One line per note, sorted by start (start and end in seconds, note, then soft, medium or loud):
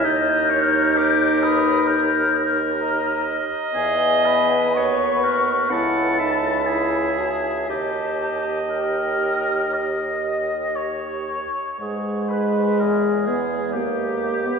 0.03 3.46 D#2 medium
0.03 3.46 D#4 loud
0.03 0.98 A#4 medium
0.03 0.51 D#5 medium
0.03 1.45 G6 loud
0.50 0.99 C#5 medium
0.96 1.44 G4 loud
0.96 2.54 A#4 medium
1.43 1.89 B4 medium
1.43 1.89 D#6 loud
1.87 2.33 A#4 medium
1.87 2.53 G6 loud
2.34 3.44 A#4 medium
2.80 4.78 D#5 loud
2.80 3.23 A#5 loud
3.73 4.78 E2 medium
3.73 5.73 B3 loud
3.73 4.27 G#4 medium
3.73 4.76 G#5 loud
4.26 4.75 B4 medium
4.75 5.70 D#2 medium
4.75 5.25 B4 medium
4.75 5.26 C#5 medium
4.75 5.72 C#6 loud
5.24 5.73 A#4 medium
5.24 5.71 B4 medium
5.70 7.65 C#2 medium
5.70 6.20 E4 medium
5.70 6.68 A4 medium
5.70 6.20 F#5 medium
5.70 7.17 B5 medium
6.19 6.70 D#4 medium
6.19 7.68 E5 medium
6.67 7.20 E4 medium
6.67 7.69 G#4 medium
7.17 7.69 F#4 medium
7.17 7.68 A5 medium
7.68 11.41 D#2 medium
7.68 11.41 G4 medium
7.68 8.60 G4 medium
7.68 11.23 D#5 medium
7.68 8.72 A5 medium
8.70 9.76 A#4 medium
8.70 10.75 G5 medium
9.74 10.78 D#5 medium
10.76 11.78 C#5 medium
11.79 12.83 G#2 medium
11.79 13.29 G#3 loud
11.79 12.33 G#4 medium
11.79 12.81 B4 soft
11.79 12.30 C#5 medium
12.28 12.81 B4 medium
12.28 12.82 B4 medium
12.79 13.78 E2 medium
12.79 13.75 G#4 medium
12.79 13.25 A#4 medium
12.79 13.77 C#5 medium
13.26 13.76 B3 medium
13.26 13.72 G#4 medium
13.72 14.59 D#2 medium
13.72 14.47 A#3 medium
13.72 14.59 G4 medium
13.72 14.59 D#5 medium
14.45 14.59 B3 medium